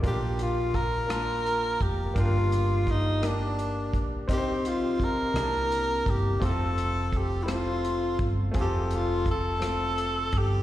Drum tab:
HH |xxxxxx|xxxxxx|xxxxxx|xxxxxx|
SD |---r--|---r--|---r--|---r--|
BD |o-o--o|o-o--o|o-o--o|o-o--o|

HH |xxxxxx|
SD |---r--|
BD |o-o--o|